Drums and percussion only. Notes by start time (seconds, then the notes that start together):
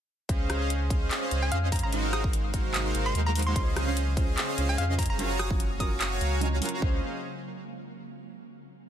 0.29 kick, closed hi-hat
0.50 cross-stick, closed hi-hat
0.70 closed hi-hat
0.90 kick, closed hi-hat
1.11 clap, closed hi-hat
1.31 closed hi-hat
1.52 closed hi-hat
1.72 kick, closed hi-hat, open hi-hat
1.79 closed hi-hat
1.93 closed hi-hat
2.13 cross-stick, closed hi-hat
2.24 kick
2.33 closed hi-hat
2.54 kick, closed hi-hat
2.74 clap, closed hi-hat
2.95 closed hi-hat
3.15 closed hi-hat
3.35 closed hi-hat, open hi-hat
3.42 closed hi-hat
3.56 kick, closed hi-hat
3.76 cross-stick, closed hi-hat
3.97 closed hi-hat
4.17 kick, closed hi-hat
4.38 clap, closed hi-hat
4.58 closed hi-hat
4.78 closed hi-hat
4.99 kick, open hi-hat
5.03 closed hi-hat
5.06 closed hi-hat
5.19 closed hi-hat
5.39 cross-stick, closed hi-hat
5.51 kick
5.60 closed hi-hat
5.80 kick, closed hi-hat
6.01 clap, closed hi-hat
6.21 closed hi-hat
6.41 closed hi-hat
6.62 closed hi-hat, open hi-hat
6.69 closed hi-hat
6.82 kick